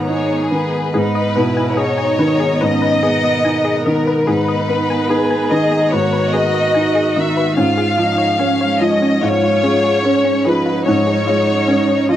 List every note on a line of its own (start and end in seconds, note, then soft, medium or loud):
0.00 0.90 G#2 soft
0.00 0.35 D#3 soft
0.00 0.70 B3 medium
0.00 0.93 B3 soft
0.00 0.94 D#4 soft
0.00 0.97 G#4 soft
0.00 0.93 A#5 soft
0.06 0.77 D#4 soft
0.06 0.89 G#4 medium
0.06 0.47 C#5 medium
0.51 0.94 D#3 soft
0.51 0.92 B4 soft
0.93 2.57 G#2 medium
0.93 4.23 B3 soft
0.93 1.39 D#4 medium
0.93 1.07 G#4 medium
0.93 1.77 B4 medium
0.93 4.23 D#5 soft
0.93 4.23 A#5 soft
1.15 1.28 D#5 medium
1.36 2.03 B2 soft
1.36 1.79 E4 medium
1.36 1.48 B4 medium
1.57 1.69 G#5 medium
1.77 2.63 D#4 medium
1.77 2.45 D#4 soft
1.77 1.90 G#4 medium
1.77 2.61 C#5 medium
1.98 2.10 G#5 medium
2.19 2.86 D#3 soft
2.19 2.32 B4 medium
2.40 2.53 G#4 medium
2.61 4.23 G#2 soft
2.61 3.03 C#4 medium
2.61 2.73 B4 medium
2.61 3.85 D#5 medium
2.82 2.94 B4 medium
3.02 4.26 B3 medium
3.02 3.69 B3 soft
3.02 3.15 G#4 medium
3.24 3.36 D#5 medium
3.45 4.11 D#4 soft
3.45 3.57 G#5 medium
3.65 3.77 G#4 medium
3.84 4.52 D#3 soft
3.84 4.26 A#4 medium
3.84 3.98 D#5 medium
4.07 4.19 B4 medium
4.27 5.89 G#2 soft
4.27 7.53 D#3 soft
4.27 7.53 B3 soft
4.27 5.11 D#4 medium
4.27 4.39 G#4 medium
4.27 5.51 B4 medium
4.27 7.53 A#5 soft
4.48 4.60 D#5 medium
4.69 5.35 B3 soft
4.69 4.81 B4 medium
4.90 5.02 G#5 medium
5.10 5.76 D#4 soft
5.10 5.94 G#4 medium
5.10 5.22 G#4 medium
5.31 5.43 G#5 medium
5.51 6.17 D#3 soft
5.51 5.63 B4 medium
5.51 5.92 D#5 medium
5.71 5.84 G#4 medium
5.91 7.53 G#2 soft
5.91 7.57 F#4 medium
5.91 6.05 B4 medium
5.91 6.33 C#5 medium
6.13 6.25 B4 medium
6.33 6.99 B3 soft
6.33 6.46 G#4 medium
6.33 7.16 D#5 medium
6.54 6.67 D#5 medium
6.74 7.41 D#4 soft
6.74 6.87 G#5 medium
6.95 7.08 G#4 medium
7.16 7.57 D#3 soft
7.16 7.28 D#5 medium
7.16 7.58 E5 medium
7.37 7.49 B4 medium
7.56 9.18 G#2 medium
7.56 10.84 G#3 soft
7.56 10.84 C#4 soft
7.56 7.69 C#4 medium
7.56 8.01 F4 medium
7.56 10.84 C#5 soft
7.56 8.78 F5 medium
7.78 7.90 G#4 medium
7.98 8.64 F3 soft
7.98 8.41 D#4 medium
7.98 8.10 F4 medium
8.18 8.31 C#5 medium
8.39 9.21 C#4 medium
8.39 8.52 C#4 medium
8.39 9.06 C#4 soft
8.61 8.73 C#5 medium
8.81 9.47 F3 soft
8.81 8.93 F4 medium
8.81 9.22 D#5 medium
9.02 9.14 C#4 medium
9.21 10.83 G#2 soft
9.21 10.06 F4 medium
9.21 9.35 F4 medium
9.21 10.46 C#5 medium
9.43 9.55 F4 medium
9.63 10.29 G#3 soft
9.63 9.76 C#4 medium
9.84 9.96 G#4 medium
10.04 10.70 C#4 soft
10.04 10.46 C#4 medium
10.04 10.17 C#5 medium
10.25 10.37 C#4 medium
10.45 11.12 F3 soft
10.45 12.16 D#4 medium
10.45 10.58 G#4 medium
10.45 10.87 B4 medium
10.66 10.78 F4 medium
10.85 12.16 G#2 medium
10.85 12.16 G#3 medium
10.85 12.16 C#4 medium
10.85 10.98 C#4 medium
10.85 12.16 C#5 soft
10.85 12.07 C#5 medium
11.07 11.19 G#4 medium
11.27 11.93 G#3 soft
11.27 11.39 F4 medium
11.47 11.60 C#5 medium
11.68 11.80 C#4 medium
11.68 12.16 C#4 soft
11.89 12.01 C#5 medium
12.09 12.16 F3 soft
12.09 12.16 F4 medium
12.09 12.16 D#5 medium